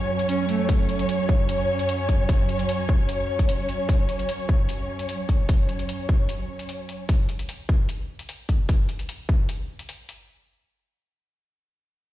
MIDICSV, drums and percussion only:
0, 0, Header, 1, 2, 480
1, 0, Start_track
1, 0, Tempo, 400000
1, 826, Time_signature, 4, 2, 24, 8
1, 14544, End_track
2, 0, Start_track
2, 0, Title_t, "Drums"
2, 231, Note_on_c, 9, 42, 48
2, 346, Note_off_c, 9, 42, 0
2, 346, Note_on_c, 9, 42, 72
2, 466, Note_off_c, 9, 42, 0
2, 586, Note_on_c, 9, 42, 51
2, 706, Note_off_c, 9, 42, 0
2, 826, Note_on_c, 9, 42, 72
2, 827, Note_on_c, 9, 36, 109
2, 946, Note_off_c, 9, 42, 0
2, 947, Note_off_c, 9, 36, 0
2, 1066, Note_on_c, 9, 42, 48
2, 1186, Note_off_c, 9, 42, 0
2, 1191, Note_on_c, 9, 42, 48
2, 1307, Note_off_c, 9, 42, 0
2, 1307, Note_on_c, 9, 42, 75
2, 1427, Note_off_c, 9, 42, 0
2, 1547, Note_on_c, 9, 36, 100
2, 1667, Note_off_c, 9, 36, 0
2, 1786, Note_on_c, 9, 42, 72
2, 1906, Note_off_c, 9, 42, 0
2, 2151, Note_on_c, 9, 42, 49
2, 2266, Note_off_c, 9, 42, 0
2, 2266, Note_on_c, 9, 42, 75
2, 2386, Note_off_c, 9, 42, 0
2, 2506, Note_on_c, 9, 36, 56
2, 2506, Note_on_c, 9, 42, 50
2, 2626, Note_off_c, 9, 36, 0
2, 2626, Note_off_c, 9, 42, 0
2, 2746, Note_on_c, 9, 42, 70
2, 2747, Note_on_c, 9, 36, 105
2, 2866, Note_off_c, 9, 42, 0
2, 2867, Note_off_c, 9, 36, 0
2, 2986, Note_on_c, 9, 42, 48
2, 3106, Note_off_c, 9, 42, 0
2, 3111, Note_on_c, 9, 42, 45
2, 3226, Note_off_c, 9, 42, 0
2, 3226, Note_on_c, 9, 42, 74
2, 3346, Note_off_c, 9, 42, 0
2, 3466, Note_on_c, 9, 36, 100
2, 3586, Note_off_c, 9, 36, 0
2, 3706, Note_on_c, 9, 42, 69
2, 3826, Note_off_c, 9, 42, 0
2, 4070, Note_on_c, 9, 42, 46
2, 4071, Note_on_c, 9, 36, 58
2, 4185, Note_off_c, 9, 42, 0
2, 4185, Note_on_c, 9, 42, 68
2, 4191, Note_off_c, 9, 36, 0
2, 4305, Note_off_c, 9, 42, 0
2, 4424, Note_on_c, 9, 42, 47
2, 4544, Note_off_c, 9, 42, 0
2, 4665, Note_on_c, 9, 42, 68
2, 4666, Note_on_c, 9, 36, 101
2, 4785, Note_off_c, 9, 42, 0
2, 4786, Note_off_c, 9, 36, 0
2, 4905, Note_on_c, 9, 42, 44
2, 5025, Note_off_c, 9, 42, 0
2, 5030, Note_on_c, 9, 42, 43
2, 5145, Note_off_c, 9, 42, 0
2, 5145, Note_on_c, 9, 42, 68
2, 5265, Note_off_c, 9, 42, 0
2, 5386, Note_on_c, 9, 36, 90
2, 5506, Note_off_c, 9, 36, 0
2, 5626, Note_on_c, 9, 42, 69
2, 5746, Note_off_c, 9, 42, 0
2, 5991, Note_on_c, 9, 42, 45
2, 6106, Note_off_c, 9, 42, 0
2, 6106, Note_on_c, 9, 42, 64
2, 6226, Note_off_c, 9, 42, 0
2, 6346, Note_on_c, 9, 42, 44
2, 6347, Note_on_c, 9, 36, 57
2, 6466, Note_off_c, 9, 42, 0
2, 6467, Note_off_c, 9, 36, 0
2, 6586, Note_on_c, 9, 42, 67
2, 6587, Note_on_c, 9, 36, 100
2, 6706, Note_off_c, 9, 42, 0
2, 6707, Note_off_c, 9, 36, 0
2, 6826, Note_on_c, 9, 42, 43
2, 6946, Note_off_c, 9, 42, 0
2, 6951, Note_on_c, 9, 42, 44
2, 7067, Note_off_c, 9, 42, 0
2, 7067, Note_on_c, 9, 42, 66
2, 7187, Note_off_c, 9, 42, 0
2, 7307, Note_on_c, 9, 36, 88
2, 7427, Note_off_c, 9, 36, 0
2, 7547, Note_on_c, 9, 42, 65
2, 7667, Note_off_c, 9, 42, 0
2, 7911, Note_on_c, 9, 42, 45
2, 8027, Note_off_c, 9, 42, 0
2, 8027, Note_on_c, 9, 42, 63
2, 8147, Note_off_c, 9, 42, 0
2, 8267, Note_on_c, 9, 42, 45
2, 8387, Note_off_c, 9, 42, 0
2, 8507, Note_on_c, 9, 36, 92
2, 8507, Note_on_c, 9, 42, 67
2, 8627, Note_off_c, 9, 36, 0
2, 8627, Note_off_c, 9, 42, 0
2, 8746, Note_on_c, 9, 42, 45
2, 8866, Note_off_c, 9, 42, 0
2, 8871, Note_on_c, 9, 42, 46
2, 8986, Note_off_c, 9, 42, 0
2, 8986, Note_on_c, 9, 42, 72
2, 9106, Note_off_c, 9, 42, 0
2, 9228, Note_on_c, 9, 36, 89
2, 9348, Note_off_c, 9, 36, 0
2, 9466, Note_on_c, 9, 42, 66
2, 9586, Note_off_c, 9, 42, 0
2, 9831, Note_on_c, 9, 42, 43
2, 9946, Note_off_c, 9, 42, 0
2, 9946, Note_on_c, 9, 42, 68
2, 10066, Note_off_c, 9, 42, 0
2, 10186, Note_on_c, 9, 42, 46
2, 10187, Note_on_c, 9, 36, 51
2, 10306, Note_off_c, 9, 42, 0
2, 10307, Note_off_c, 9, 36, 0
2, 10426, Note_on_c, 9, 42, 69
2, 10427, Note_on_c, 9, 36, 98
2, 10546, Note_off_c, 9, 42, 0
2, 10547, Note_off_c, 9, 36, 0
2, 10666, Note_on_c, 9, 42, 45
2, 10786, Note_off_c, 9, 42, 0
2, 10790, Note_on_c, 9, 42, 46
2, 10906, Note_off_c, 9, 42, 0
2, 10906, Note_on_c, 9, 42, 73
2, 11026, Note_off_c, 9, 42, 0
2, 11146, Note_on_c, 9, 36, 93
2, 11266, Note_off_c, 9, 36, 0
2, 11386, Note_on_c, 9, 42, 69
2, 11506, Note_off_c, 9, 42, 0
2, 11751, Note_on_c, 9, 42, 46
2, 11866, Note_off_c, 9, 42, 0
2, 11866, Note_on_c, 9, 42, 67
2, 11986, Note_off_c, 9, 42, 0
2, 12106, Note_on_c, 9, 42, 48
2, 12226, Note_off_c, 9, 42, 0
2, 14544, End_track
0, 0, End_of_file